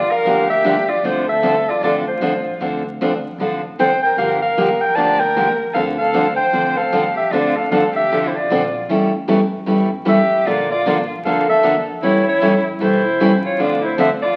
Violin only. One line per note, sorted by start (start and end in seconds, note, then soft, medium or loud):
0.00 0.12 F4 medium
0.11 0.48 A#4 medium
0.48 0.90 G4 medium
0.88 1.03 F4 medium
1.03 1.28 F4 medium
1.30 1.71 A4 medium
1.69 1.83 F4 medium
1.84 1.95 F4 medium
2.09 2.58 F4 medium
3.80 4.02 C5 medium
4.05 4.17 A#4 medium
4.18 4.40 A#4 medium
4.40 4.80 A#4 medium
4.80 4.97 A#4 medium
4.95 5.21 D5 medium
5.20 5.59 A#4 medium
5.73 5.84 A4 medium
5.98 6.35 A4 medium
6.37 6.78 C5 medium
6.77 7.14 A4 medium
7.14 7.33 G4 medium
7.31 7.57 F4 medium
7.55 7.70 A4 medium
7.70 7.93 A4 medium
7.94 8.28 G4 medium
8.27 8.37 E4 soft
8.36 8.89 F4 medium
10.07 10.47 G4 medium
10.46 10.69 F4 medium
10.70 11.06 F4 medium
11.24 11.46 A4 medium
11.48 11.84 A4 medium
12.02 12.24 E4 medium
12.24 12.62 E4 medium
12.80 13.39 E4 medium
13.44 13.59 F4 medium
13.59 13.81 F4 medium
13.82 13.96 E4 medium
13.97 14.08 A4 medium
14.22 14.36 F4 medium